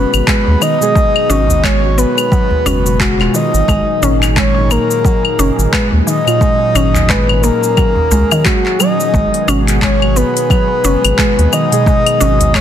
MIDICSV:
0, 0, Header, 1, 8, 480
1, 0, Start_track
1, 0, Key_signature, 5, "minor"
1, 0, Tempo, 681818
1, 674, Time_signature, 4, 2, 24, 8
1, 8877, End_track
2, 0, Start_track
2, 0, Title_t, "Soft synth lead"
2, 0, Program_c, 0, 80
2, 0, Note_on_c, 0, 71, 108
2, 195, Note_off_c, 0, 71, 0
2, 202, Note_on_c, 0, 71, 113
2, 438, Note_on_c, 0, 75, 120
2, 449, Note_off_c, 0, 71, 0
2, 1157, Note_on_c, 0, 73, 110
2, 1167, Note_off_c, 0, 75, 0
2, 1395, Note_on_c, 0, 71, 119
2, 1405, Note_off_c, 0, 73, 0
2, 2116, Note_on_c, 0, 66, 96
2, 2126, Note_off_c, 0, 71, 0
2, 2361, Note_on_c, 0, 75, 99
2, 2371, Note_off_c, 0, 66, 0
2, 2837, Note_off_c, 0, 75, 0
2, 3083, Note_on_c, 0, 73, 102
2, 3320, Note_on_c, 0, 70, 109
2, 3331, Note_off_c, 0, 73, 0
2, 4032, Note_off_c, 0, 70, 0
2, 4036, Note_on_c, 0, 71, 108
2, 4135, Note_off_c, 0, 71, 0
2, 4286, Note_on_c, 0, 75, 118
2, 4999, Note_on_c, 0, 71, 99
2, 5009, Note_off_c, 0, 75, 0
2, 5225, Note_off_c, 0, 71, 0
2, 5229, Note_on_c, 0, 70, 108
2, 5947, Note_on_c, 0, 66, 98
2, 5957, Note_off_c, 0, 70, 0
2, 6187, Note_on_c, 0, 75, 91
2, 6198, Note_off_c, 0, 66, 0
2, 6671, Note_off_c, 0, 75, 0
2, 6914, Note_on_c, 0, 73, 92
2, 7156, Note_on_c, 0, 71, 102
2, 7167, Note_off_c, 0, 73, 0
2, 7872, Note_off_c, 0, 71, 0
2, 7876, Note_on_c, 0, 71, 98
2, 8121, Note_on_c, 0, 75, 104
2, 8131, Note_off_c, 0, 71, 0
2, 8837, Note_on_c, 0, 73, 101
2, 8847, Note_off_c, 0, 75, 0
2, 8877, Note_off_c, 0, 73, 0
2, 8877, End_track
3, 0, Start_track
3, 0, Title_t, "Analog synth pad"
3, 0, Program_c, 1, 89
3, 0, Note_on_c, 1, 51, 80
3, 0, Note_on_c, 1, 54, 78
3, 0, Note_on_c, 1, 56, 77
3, 0, Note_on_c, 1, 59, 74
3, 0, Note_on_c, 1, 68, 96
3, 2568, Note_off_c, 1, 56, 0
3, 2568, Note_off_c, 1, 59, 0
3, 2586, Note_on_c, 1, 46, 85
3, 2586, Note_on_c, 1, 63, 75
3, 4491, Note_off_c, 1, 63, 0
3, 4512, Note_on_c, 1, 61, 74
3, 6402, Note_off_c, 1, 46, 0
3, 6408, Note_off_c, 1, 51, 0
3, 6414, Note_off_c, 1, 61, 0
3, 6435, Note_on_c, 1, 51, 78
3, 6437, Note_on_c, 1, 56, 71
3, 6438, Note_on_c, 1, 59, 76
3, 8877, Note_off_c, 1, 51, 0
3, 8877, Note_off_c, 1, 54, 0
3, 8877, Note_off_c, 1, 56, 0
3, 8877, Note_off_c, 1, 59, 0
3, 8877, Note_off_c, 1, 68, 0
3, 8877, End_track
4, 0, Start_track
4, 0, Title_t, "Synth keys"
4, 0, Program_c, 2, 88
4, 0, Note_on_c, 2, 47, 82
4, 0, Note_on_c, 2, 56, 77
4, 0, Note_on_c, 2, 66, 97
4, 533, Note_off_c, 2, 47, 0
4, 540, Note_off_c, 2, 56, 0
4, 547, Note_off_c, 2, 66, 0
4, 566, Note_on_c, 2, 47, 92
4, 574, Note_on_c, 2, 56, 86
4, 581, Note_on_c, 2, 68, 108
4, 886, Note_off_c, 2, 47, 0
4, 890, Note_off_c, 2, 56, 0
4, 894, Note_off_c, 2, 68, 0
4, 905, Note_on_c, 2, 47, 86
4, 913, Note_on_c, 2, 56, 81
4, 919, Note_on_c, 2, 66, 91
4, 1256, Note_off_c, 2, 47, 0
4, 1260, Note_off_c, 2, 56, 0
4, 1263, Note_off_c, 2, 66, 0
4, 1278, Note_on_c, 2, 47, 84
4, 1292, Note_on_c, 2, 56, 71
4, 1307, Note_on_c, 2, 66, 88
4, 1846, Note_off_c, 2, 47, 0
4, 1853, Note_off_c, 2, 56, 0
4, 1860, Note_off_c, 2, 66, 0
4, 1863, Note_on_c, 2, 47, 91
4, 1870, Note_on_c, 2, 56, 92
4, 1877, Note_on_c, 2, 66, 98
4, 1975, Note_off_c, 2, 47, 0
4, 1979, Note_off_c, 2, 56, 0
4, 1982, Note_off_c, 2, 66, 0
4, 2000, Note_on_c, 2, 47, 94
4, 2006, Note_on_c, 2, 56, 83
4, 2013, Note_on_c, 2, 66, 96
4, 2214, Note_off_c, 2, 47, 0
4, 2217, Note_off_c, 2, 56, 0
4, 2220, Note_off_c, 2, 66, 0
4, 2244, Note_on_c, 2, 47, 93
4, 2251, Note_on_c, 2, 56, 93
4, 2256, Note_on_c, 2, 65, 106
4, 2375, Note_off_c, 2, 47, 0
4, 2378, Note_off_c, 2, 56, 0
4, 2381, Note_off_c, 2, 65, 0
4, 2824, Note_on_c, 2, 46, 93
4, 2830, Note_on_c, 2, 54, 84
4, 2838, Note_on_c, 2, 63, 92
4, 3176, Note_off_c, 2, 46, 0
4, 3179, Note_off_c, 2, 54, 0
4, 3183, Note_off_c, 2, 63, 0
4, 3196, Note_on_c, 2, 46, 82
4, 3211, Note_on_c, 2, 54, 78
4, 3226, Note_on_c, 2, 63, 96
4, 4372, Note_off_c, 2, 46, 0
4, 4379, Note_off_c, 2, 54, 0
4, 4386, Note_off_c, 2, 63, 0
4, 4405, Note_on_c, 2, 46, 91
4, 4413, Note_on_c, 2, 54, 89
4, 4419, Note_on_c, 2, 65, 105
4, 4725, Note_off_c, 2, 46, 0
4, 4730, Note_off_c, 2, 54, 0
4, 4733, Note_off_c, 2, 65, 0
4, 4745, Note_on_c, 2, 46, 86
4, 4751, Note_on_c, 2, 54, 82
4, 4758, Note_on_c, 2, 63, 89
4, 5096, Note_off_c, 2, 46, 0
4, 5099, Note_off_c, 2, 54, 0
4, 5102, Note_off_c, 2, 63, 0
4, 5123, Note_on_c, 2, 46, 78
4, 5136, Note_on_c, 2, 54, 74
4, 5152, Note_on_c, 2, 63, 88
4, 5689, Note_off_c, 2, 46, 0
4, 5695, Note_off_c, 2, 54, 0
4, 5703, Note_off_c, 2, 63, 0
4, 6664, Note_on_c, 2, 47, 85
4, 6672, Note_on_c, 2, 56, 83
4, 6680, Note_on_c, 2, 66, 95
4, 7016, Note_off_c, 2, 47, 0
4, 7020, Note_off_c, 2, 56, 0
4, 7024, Note_off_c, 2, 66, 0
4, 7035, Note_on_c, 2, 47, 84
4, 7050, Note_on_c, 2, 56, 76
4, 7066, Note_on_c, 2, 66, 95
4, 8211, Note_off_c, 2, 47, 0
4, 8219, Note_off_c, 2, 56, 0
4, 8227, Note_off_c, 2, 66, 0
4, 8244, Note_on_c, 2, 47, 96
4, 8253, Note_on_c, 2, 56, 91
4, 8260, Note_on_c, 2, 68, 106
4, 8565, Note_off_c, 2, 47, 0
4, 8570, Note_off_c, 2, 56, 0
4, 8573, Note_off_c, 2, 68, 0
4, 8585, Note_on_c, 2, 47, 87
4, 8592, Note_on_c, 2, 56, 82
4, 8600, Note_on_c, 2, 66, 95
4, 8877, Note_off_c, 2, 47, 0
4, 8877, Note_off_c, 2, 56, 0
4, 8877, Note_off_c, 2, 66, 0
4, 8877, End_track
5, 0, Start_track
5, 0, Title_t, "Synth pluck"
5, 0, Program_c, 3, 84
5, 189, Note_on_c, 3, 56, 102
5, 422, Note_off_c, 3, 56, 0
5, 432, Note_on_c, 3, 51, 72
5, 513, Note_off_c, 3, 51, 0
5, 671, Note_on_c, 3, 56, 85
5, 806, Note_off_c, 3, 56, 0
5, 913, Note_on_c, 3, 61, 100
5, 993, Note_off_c, 3, 61, 0
5, 1153, Note_on_c, 3, 56, 102
5, 1383, Note_off_c, 3, 56, 0
5, 1393, Note_on_c, 3, 59, 75
5, 1623, Note_off_c, 3, 59, 0
5, 1633, Note_on_c, 3, 54, 88
5, 1767, Note_off_c, 3, 54, 0
5, 1872, Note_on_c, 3, 61, 101
5, 1953, Note_off_c, 3, 61, 0
5, 2112, Note_on_c, 3, 56, 102
5, 2343, Note_off_c, 3, 56, 0
5, 2352, Note_on_c, 3, 51, 67
5, 2433, Note_off_c, 3, 51, 0
5, 2593, Note_on_c, 3, 56, 85
5, 2727, Note_off_c, 3, 56, 0
5, 2836, Note_on_c, 3, 61, 109
5, 2915, Note_off_c, 3, 61, 0
5, 3072, Note_on_c, 3, 56, 101
5, 3303, Note_off_c, 3, 56, 0
5, 3315, Note_on_c, 3, 58, 80
5, 3545, Note_off_c, 3, 58, 0
5, 3552, Note_on_c, 3, 54, 86
5, 3686, Note_off_c, 3, 54, 0
5, 3795, Note_on_c, 3, 61, 105
5, 3874, Note_off_c, 3, 61, 0
5, 4034, Note_on_c, 3, 56, 109
5, 4264, Note_off_c, 3, 56, 0
5, 4273, Note_on_c, 3, 51, 69
5, 4353, Note_off_c, 3, 51, 0
5, 4513, Note_on_c, 3, 56, 84
5, 4647, Note_off_c, 3, 56, 0
5, 4755, Note_on_c, 3, 61, 107
5, 4835, Note_off_c, 3, 61, 0
5, 4995, Note_on_c, 3, 56, 96
5, 5225, Note_off_c, 3, 56, 0
5, 5235, Note_on_c, 3, 58, 83
5, 5465, Note_off_c, 3, 58, 0
5, 5474, Note_on_c, 3, 54, 85
5, 5607, Note_off_c, 3, 54, 0
5, 5713, Note_on_c, 3, 56, 78
5, 5847, Note_off_c, 3, 56, 0
5, 5856, Note_on_c, 3, 51, 97
5, 5950, Note_off_c, 3, 51, 0
5, 5955, Note_on_c, 3, 56, 78
5, 6081, Note_off_c, 3, 56, 0
5, 6197, Note_on_c, 3, 54, 72
5, 6329, Note_off_c, 3, 54, 0
5, 6436, Note_on_c, 3, 56, 82
5, 6568, Note_off_c, 3, 56, 0
5, 6674, Note_on_c, 3, 61, 113
5, 6754, Note_off_c, 3, 61, 0
5, 6914, Note_on_c, 3, 56, 101
5, 7144, Note_off_c, 3, 56, 0
5, 7154, Note_on_c, 3, 59, 79
5, 7384, Note_off_c, 3, 59, 0
5, 7395, Note_on_c, 3, 54, 88
5, 7528, Note_off_c, 3, 54, 0
5, 7635, Note_on_c, 3, 61, 99
5, 7715, Note_off_c, 3, 61, 0
5, 7875, Note_on_c, 3, 56, 101
5, 8104, Note_off_c, 3, 56, 0
5, 8114, Note_on_c, 3, 51, 74
5, 8194, Note_off_c, 3, 51, 0
5, 8356, Note_on_c, 3, 56, 86
5, 8488, Note_off_c, 3, 56, 0
5, 8592, Note_on_c, 3, 61, 106
5, 8673, Note_off_c, 3, 61, 0
5, 8834, Note_on_c, 3, 56, 107
5, 8877, Note_off_c, 3, 56, 0
5, 8877, End_track
6, 0, Start_track
6, 0, Title_t, "Analog synth bass"
6, 0, Program_c, 4, 38
6, 96, Note_on_c, 4, 32, 85
6, 156, Note_off_c, 4, 32, 0
6, 335, Note_on_c, 4, 39, 99
6, 395, Note_off_c, 4, 39, 0
6, 912, Note_on_c, 4, 32, 86
6, 1445, Note_off_c, 4, 32, 0
6, 1870, Note_on_c, 4, 30, 74
6, 2252, Note_on_c, 4, 27, 92
6, 2263, Note_off_c, 4, 30, 0
6, 2313, Note_off_c, 4, 27, 0
6, 2492, Note_on_c, 4, 32, 85
6, 2553, Note_off_c, 4, 32, 0
6, 2591, Note_on_c, 4, 32, 97
6, 2677, Note_off_c, 4, 32, 0
6, 2833, Note_on_c, 4, 32, 86
6, 3365, Note_off_c, 4, 32, 0
6, 3793, Note_on_c, 4, 30, 81
6, 3878, Note_off_c, 4, 30, 0
6, 3930, Note_on_c, 4, 32, 82
6, 3993, Note_off_c, 4, 32, 0
6, 4172, Note_on_c, 4, 39, 93
6, 4233, Note_off_c, 4, 39, 0
6, 4752, Note_on_c, 4, 32, 90
6, 5284, Note_off_c, 4, 32, 0
6, 5713, Note_on_c, 4, 37, 78
6, 5798, Note_off_c, 4, 37, 0
6, 6432, Note_on_c, 4, 32, 94
6, 6518, Note_off_c, 4, 32, 0
6, 6673, Note_on_c, 4, 32, 88
6, 7205, Note_off_c, 4, 32, 0
6, 7634, Note_on_c, 4, 30, 78
6, 7719, Note_off_c, 4, 30, 0
6, 7775, Note_on_c, 4, 32, 84
6, 7835, Note_off_c, 4, 32, 0
6, 8017, Note_on_c, 4, 39, 101
6, 8076, Note_off_c, 4, 39, 0
6, 8598, Note_on_c, 4, 32, 95
6, 8877, Note_off_c, 4, 32, 0
6, 8877, End_track
7, 0, Start_track
7, 0, Title_t, "Udu"
7, 1048, Note_on_c, 9, 64, 83
7, 1119, Note_off_c, 9, 64, 0
7, 1766, Note_on_c, 9, 64, 90
7, 1837, Note_off_c, 9, 64, 0
7, 1868, Note_on_c, 9, 64, 79
7, 1938, Note_off_c, 9, 64, 0
7, 4893, Note_on_c, 9, 64, 85
7, 4963, Note_off_c, 9, 64, 0
7, 5605, Note_on_c, 9, 64, 79
7, 5675, Note_off_c, 9, 64, 0
7, 5712, Note_on_c, 9, 64, 91
7, 5783, Note_off_c, 9, 64, 0
7, 8731, Note_on_c, 9, 64, 75
7, 8801, Note_off_c, 9, 64, 0
7, 8877, End_track
8, 0, Start_track
8, 0, Title_t, "Drums"
8, 97, Note_on_c, 9, 75, 81
8, 98, Note_on_c, 9, 69, 44
8, 167, Note_off_c, 9, 75, 0
8, 168, Note_off_c, 9, 69, 0
8, 193, Note_on_c, 9, 36, 112
8, 197, Note_on_c, 9, 39, 110
8, 198, Note_on_c, 9, 69, 34
8, 263, Note_off_c, 9, 36, 0
8, 268, Note_off_c, 9, 39, 0
8, 269, Note_off_c, 9, 69, 0
8, 435, Note_on_c, 9, 75, 76
8, 436, Note_on_c, 9, 69, 75
8, 506, Note_off_c, 9, 75, 0
8, 507, Note_off_c, 9, 69, 0
8, 576, Note_on_c, 9, 69, 42
8, 646, Note_off_c, 9, 69, 0
8, 673, Note_on_c, 9, 36, 113
8, 678, Note_on_c, 9, 69, 35
8, 743, Note_off_c, 9, 36, 0
8, 748, Note_off_c, 9, 69, 0
8, 814, Note_on_c, 9, 75, 77
8, 885, Note_off_c, 9, 75, 0
8, 917, Note_on_c, 9, 69, 79
8, 987, Note_off_c, 9, 69, 0
8, 1058, Note_on_c, 9, 69, 49
8, 1129, Note_off_c, 9, 69, 0
8, 1151, Note_on_c, 9, 36, 110
8, 1158, Note_on_c, 9, 39, 96
8, 1158, Note_on_c, 9, 75, 70
8, 1159, Note_on_c, 9, 69, 32
8, 1222, Note_off_c, 9, 36, 0
8, 1229, Note_off_c, 9, 39, 0
8, 1229, Note_off_c, 9, 75, 0
8, 1230, Note_off_c, 9, 69, 0
8, 1397, Note_on_c, 9, 69, 78
8, 1468, Note_off_c, 9, 69, 0
8, 1534, Note_on_c, 9, 75, 80
8, 1535, Note_on_c, 9, 69, 46
8, 1604, Note_off_c, 9, 75, 0
8, 1606, Note_off_c, 9, 69, 0
8, 1631, Note_on_c, 9, 36, 108
8, 1637, Note_on_c, 9, 69, 33
8, 1702, Note_off_c, 9, 36, 0
8, 1707, Note_off_c, 9, 69, 0
8, 1876, Note_on_c, 9, 75, 77
8, 1877, Note_on_c, 9, 69, 85
8, 1946, Note_off_c, 9, 75, 0
8, 1947, Note_off_c, 9, 69, 0
8, 2016, Note_on_c, 9, 69, 52
8, 2086, Note_off_c, 9, 69, 0
8, 2111, Note_on_c, 9, 36, 114
8, 2116, Note_on_c, 9, 39, 107
8, 2117, Note_on_c, 9, 69, 37
8, 2182, Note_off_c, 9, 36, 0
8, 2187, Note_off_c, 9, 39, 0
8, 2188, Note_off_c, 9, 69, 0
8, 2257, Note_on_c, 9, 39, 29
8, 2257, Note_on_c, 9, 75, 72
8, 2327, Note_off_c, 9, 39, 0
8, 2327, Note_off_c, 9, 75, 0
8, 2355, Note_on_c, 9, 69, 80
8, 2425, Note_off_c, 9, 69, 0
8, 2496, Note_on_c, 9, 69, 45
8, 2566, Note_off_c, 9, 69, 0
8, 2592, Note_on_c, 9, 36, 108
8, 2595, Note_on_c, 9, 75, 72
8, 2597, Note_on_c, 9, 69, 34
8, 2662, Note_off_c, 9, 36, 0
8, 2666, Note_off_c, 9, 75, 0
8, 2667, Note_off_c, 9, 69, 0
8, 2836, Note_on_c, 9, 69, 78
8, 2906, Note_off_c, 9, 69, 0
8, 2976, Note_on_c, 9, 39, 30
8, 2976, Note_on_c, 9, 75, 81
8, 2977, Note_on_c, 9, 69, 44
8, 3046, Note_off_c, 9, 39, 0
8, 3046, Note_off_c, 9, 75, 0
8, 3047, Note_off_c, 9, 69, 0
8, 3072, Note_on_c, 9, 36, 108
8, 3077, Note_on_c, 9, 39, 98
8, 3078, Note_on_c, 9, 69, 34
8, 3143, Note_off_c, 9, 36, 0
8, 3147, Note_off_c, 9, 39, 0
8, 3149, Note_off_c, 9, 69, 0
8, 3315, Note_on_c, 9, 75, 70
8, 3316, Note_on_c, 9, 69, 74
8, 3385, Note_off_c, 9, 75, 0
8, 3387, Note_off_c, 9, 69, 0
8, 3455, Note_on_c, 9, 69, 47
8, 3526, Note_off_c, 9, 69, 0
8, 3552, Note_on_c, 9, 36, 113
8, 3557, Note_on_c, 9, 69, 34
8, 3623, Note_off_c, 9, 36, 0
8, 3627, Note_off_c, 9, 69, 0
8, 3694, Note_on_c, 9, 75, 70
8, 3764, Note_off_c, 9, 75, 0
8, 3797, Note_on_c, 9, 69, 85
8, 3868, Note_off_c, 9, 69, 0
8, 3938, Note_on_c, 9, 69, 52
8, 4009, Note_off_c, 9, 69, 0
8, 4033, Note_on_c, 9, 36, 115
8, 4038, Note_on_c, 9, 39, 105
8, 4038, Note_on_c, 9, 75, 76
8, 4040, Note_on_c, 9, 69, 36
8, 4103, Note_off_c, 9, 36, 0
8, 4109, Note_off_c, 9, 39, 0
8, 4109, Note_off_c, 9, 75, 0
8, 4110, Note_off_c, 9, 69, 0
8, 4278, Note_on_c, 9, 69, 83
8, 4348, Note_off_c, 9, 69, 0
8, 4418, Note_on_c, 9, 75, 68
8, 4419, Note_on_c, 9, 69, 45
8, 4488, Note_off_c, 9, 75, 0
8, 4490, Note_off_c, 9, 69, 0
8, 4512, Note_on_c, 9, 36, 109
8, 4517, Note_on_c, 9, 69, 35
8, 4583, Note_off_c, 9, 36, 0
8, 4587, Note_off_c, 9, 69, 0
8, 4756, Note_on_c, 9, 75, 74
8, 4757, Note_on_c, 9, 69, 83
8, 4826, Note_off_c, 9, 75, 0
8, 4828, Note_off_c, 9, 69, 0
8, 4896, Note_on_c, 9, 39, 29
8, 4897, Note_on_c, 9, 69, 49
8, 4966, Note_off_c, 9, 39, 0
8, 4967, Note_off_c, 9, 69, 0
8, 4992, Note_on_c, 9, 36, 98
8, 4996, Note_on_c, 9, 39, 89
8, 4997, Note_on_c, 9, 69, 31
8, 5063, Note_off_c, 9, 36, 0
8, 5066, Note_off_c, 9, 39, 0
8, 5068, Note_off_c, 9, 69, 0
8, 5135, Note_on_c, 9, 75, 81
8, 5205, Note_off_c, 9, 75, 0
8, 5235, Note_on_c, 9, 69, 75
8, 5305, Note_off_c, 9, 69, 0
8, 5374, Note_on_c, 9, 69, 45
8, 5444, Note_off_c, 9, 69, 0
8, 5471, Note_on_c, 9, 75, 71
8, 5472, Note_on_c, 9, 69, 33
8, 5473, Note_on_c, 9, 36, 108
8, 5542, Note_off_c, 9, 75, 0
8, 5543, Note_off_c, 9, 36, 0
8, 5543, Note_off_c, 9, 69, 0
8, 5713, Note_on_c, 9, 69, 80
8, 5783, Note_off_c, 9, 69, 0
8, 5853, Note_on_c, 9, 75, 82
8, 5855, Note_on_c, 9, 69, 49
8, 5924, Note_off_c, 9, 75, 0
8, 5925, Note_off_c, 9, 69, 0
8, 5952, Note_on_c, 9, 39, 103
8, 5953, Note_on_c, 9, 36, 110
8, 5954, Note_on_c, 9, 69, 36
8, 6023, Note_off_c, 9, 36, 0
8, 6023, Note_off_c, 9, 39, 0
8, 6024, Note_off_c, 9, 69, 0
8, 6094, Note_on_c, 9, 39, 30
8, 6165, Note_off_c, 9, 39, 0
8, 6194, Note_on_c, 9, 75, 72
8, 6196, Note_on_c, 9, 69, 78
8, 6265, Note_off_c, 9, 75, 0
8, 6266, Note_off_c, 9, 69, 0
8, 6338, Note_on_c, 9, 69, 47
8, 6408, Note_off_c, 9, 69, 0
8, 6433, Note_on_c, 9, 36, 106
8, 6438, Note_on_c, 9, 69, 33
8, 6503, Note_off_c, 9, 36, 0
8, 6508, Note_off_c, 9, 69, 0
8, 6576, Note_on_c, 9, 46, 43
8, 6646, Note_off_c, 9, 46, 0
8, 6676, Note_on_c, 9, 75, 75
8, 6678, Note_on_c, 9, 69, 80
8, 6747, Note_off_c, 9, 75, 0
8, 6748, Note_off_c, 9, 69, 0
8, 6817, Note_on_c, 9, 39, 31
8, 6817, Note_on_c, 9, 46, 57
8, 6818, Note_on_c, 9, 69, 46
8, 6887, Note_off_c, 9, 39, 0
8, 6887, Note_off_c, 9, 46, 0
8, 6889, Note_off_c, 9, 69, 0
8, 6913, Note_on_c, 9, 36, 98
8, 6915, Note_on_c, 9, 39, 88
8, 6916, Note_on_c, 9, 69, 33
8, 6983, Note_off_c, 9, 36, 0
8, 6985, Note_off_c, 9, 39, 0
8, 6986, Note_off_c, 9, 69, 0
8, 7056, Note_on_c, 9, 75, 80
8, 7126, Note_off_c, 9, 75, 0
8, 7157, Note_on_c, 9, 69, 74
8, 7227, Note_off_c, 9, 69, 0
8, 7298, Note_on_c, 9, 46, 54
8, 7300, Note_on_c, 9, 69, 45
8, 7369, Note_off_c, 9, 46, 0
8, 7370, Note_off_c, 9, 69, 0
8, 7392, Note_on_c, 9, 36, 102
8, 7396, Note_on_c, 9, 75, 76
8, 7397, Note_on_c, 9, 69, 34
8, 7463, Note_off_c, 9, 36, 0
8, 7466, Note_off_c, 9, 75, 0
8, 7468, Note_off_c, 9, 69, 0
8, 7635, Note_on_c, 9, 69, 80
8, 7705, Note_off_c, 9, 69, 0
8, 7776, Note_on_c, 9, 46, 57
8, 7776, Note_on_c, 9, 75, 87
8, 7777, Note_on_c, 9, 69, 49
8, 7846, Note_off_c, 9, 46, 0
8, 7846, Note_off_c, 9, 75, 0
8, 7848, Note_off_c, 9, 69, 0
8, 7873, Note_on_c, 9, 36, 110
8, 7875, Note_on_c, 9, 39, 96
8, 7877, Note_on_c, 9, 69, 34
8, 7943, Note_off_c, 9, 36, 0
8, 7946, Note_off_c, 9, 39, 0
8, 7947, Note_off_c, 9, 69, 0
8, 8017, Note_on_c, 9, 46, 39
8, 8088, Note_off_c, 9, 46, 0
8, 8115, Note_on_c, 9, 75, 73
8, 8117, Note_on_c, 9, 69, 76
8, 8186, Note_off_c, 9, 75, 0
8, 8187, Note_off_c, 9, 69, 0
8, 8254, Note_on_c, 9, 46, 50
8, 8255, Note_on_c, 9, 69, 44
8, 8324, Note_off_c, 9, 46, 0
8, 8326, Note_off_c, 9, 69, 0
8, 8352, Note_on_c, 9, 36, 104
8, 8357, Note_on_c, 9, 69, 31
8, 8422, Note_off_c, 9, 36, 0
8, 8427, Note_off_c, 9, 69, 0
8, 8494, Note_on_c, 9, 46, 47
8, 8494, Note_on_c, 9, 75, 83
8, 8564, Note_off_c, 9, 46, 0
8, 8564, Note_off_c, 9, 75, 0
8, 8595, Note_on_c, 9, 69, 78
8, 8666, Note_off_c, 9, 69, 0
8, 8734, Note_on_c, 9, 46, 57
8, 8736, Note_on_c, 9, 69, 45
8, 8805, Note_off_c, 9, 46, 0
8, 8806, Note_off_c, 9, 69, 0
8, 8832, Note_on_c, 9, 36, 91
8, 8835, Note_on_c, 9, 39, 91
8, 8835, Note_on_c, 9, 75, 76
8, 8837, Note_on_c, 9, 69, 30
8, 8877, Note_off_c, 9, 36, 0
8, 8877, Note_off_c, 9, 39, 0
8, 8877, Note_off_c, 9, 69, 0
8, 8877, Note_off_c, 9, 75, 0
8, 8877, End_track
0, 0, End_of_file